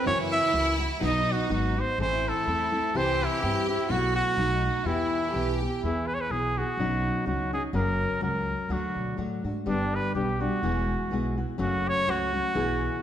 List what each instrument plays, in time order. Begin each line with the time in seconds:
0.05 nylon-string guitar F#2 C#3 E3 A#3 E4 F#4, upright bass F#2, violin section E4, trumpet C#5
0.32 trumpet E5
0.52 upright bass C#2, nylon-string guitar E3 A#3 F#4
0.79 nylon-string guitar E3 A#3 E4 F#4
1.00 upright bass B1, nylon-string guitar B2 F#3 B3 D#4 F#4, violin section D#4
1.05 trumpet D#5
1.32 trumpet F#4
1.48 upright bass G#1, nylon-string guitar F#3 B3 D#4 F#4
1.53 trumpet F#4
1.77 nylon-string guitar B3 D#4 F#4, trumpet C5
1.98 upright bass A1, nylon-string guitar A2 E3 A3 C4 E4 A4, violin section E4, trumpet C5
2.29 trumpet A4
2.47 upright bass E2, nylon-string guitar A3 C4 E4 A4
2.72 nylon-string guitar A3 C4 E4 A4
2.94 upright bass C2, nylon-string guitar C3 E3 C4 E4 G4, violin section G4, trumpet C5
3.25 trumpet E4
3.41 upright bass G2, nylon-string guitar E3 C4 E4 G4
3.69 nylon-string guitar C4 E4 G4, trumpet E4
3.88 upright bass B1, nylon-string guitar B2 F#3 A3 E4 F#4, violin section F#4, trumpet F#4
4.16 trumpet F#4
4.36 upright bass B1, nylon-string guitar F#3 A3 D#4 F#4, violin section D#4
4.64 nylon-string guitar A3 D#4 F#4
4.85 upright bass E2, nylon-string guitar E3 B3 E4 G4, violin section E4, trumpet E4
5.26 violin section G4 A4
5.34 upright bass B1, nylon-string guitar E3 B3 E4 G4
5.62 nylon-string guitar B3 E4 G4
5.82 upright bass E2, nylon-string guitar E3 B3 E4 G#4, trumpet E4
6.07 trumpet B4
6.14 trumpet C#5
6.21 trumpet B4
6.30 upright bass B1, nylon-string guitar E3 B3 E4 G#4, trumpet G#4
6.58 nylon-string guitar B3 E4 G#4, trumpet F#4
6.77 upright bass B1, nylon-string guitar B2 F#3 C#4 D#4 F#4
7.26 upright bass C#2, nylon-string guitar F#3 C#4 D#4 F#4, trumpet F#4
7.53 nylon-string guitar C#4 D#4 F#4, trumpet G#4
7.73 upright bass F#1, nylon-string guitar F#2 C#3 F#3 A#3 C#4 F#4, trumpet A#4
8.21 upright bass C#2, nylon-string guitar F#3 A#3 C#4 F#4, trumpet A#4
8.69 upright bass D2, nylon-string guitar D3 F#3 A3 D4 F#4, trumpet F#4
8.96 upright bass B2
9.17 upright bass A2, nylon-string guitar F#3 A3 D4 F#4
9.44 upright bass G#2, nylon-string guitar A3 D4 F#4
9.66 upright bass G1, nylon-string guitar G2 D3 G3 B3 D4 G4, trumpet D4
9.95 trumpet B4
10.14 upright bass B1, nylon-string guitar G3 B3 D4 G4, trumpet G4
10.40 nylon-string guitar G3 B3 D4 G4, trumpet F#4
10.63 upright bass E1, nylon-string guitar E3 G#3 B3 E4 F#4
11.11 upright bass B1, nylon-string guitar G#3 B3 E4 F#4
11.37 nylon-string guitar B3 E4 F#4
11.58 upright bass F#1, nylon-string guitar F#2 C#3 F#3 A3 C#4 F#4, trumpet F#4
11.88 trumpet C#5
12.06 upright bass C#2, nylon-string guitar F#3 A3 C#4 F#4, trumpet F#4
12.33 nylon-string guitar F#3 A3 C#4 F#4
12.54 upright bass B1, nylon-string guitar B2 E3 B3 E4 G#4